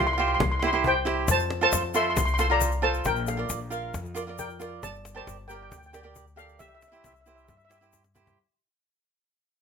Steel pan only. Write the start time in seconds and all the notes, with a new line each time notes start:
0.07 C6
0.13 C6
0.20 C6
0.28 C6
0.34 C6
0.43 C6
0.52 C6
0.59 C6
0.67 C6
0.74 C6
0.87 C5 G5
1.31 C5 A5
1.63 C5 A5
1.96 E5 C6
2.03 C6
2.10 C6
2.18 C6
2.25 C6
2.34 C6
2.40 C6
2.51 D5 A#5
2.83 C5 A5
3.06 A#4 G5
3.28 A4 F5
4.39 A#4 G5
4.83 D5 A5
5.16 C5 A5
5.48 A#4 G5
5.55 G5
5.63 G5
5.70 G5
5.78 G5
5.86 G5
5.93 G5
6.00 G5
6.37 A4 F5
6.59 G4 E5
6.68 E5
6.75 E5
6.83 E5
6.88 E5
6.97 E5
7.06 E5
7.13 E5
7.21 E5
7.28 E5
7.35 E5
7.45 E5
7.49 E5
7.57 E5
7.65 E5
7.71 E5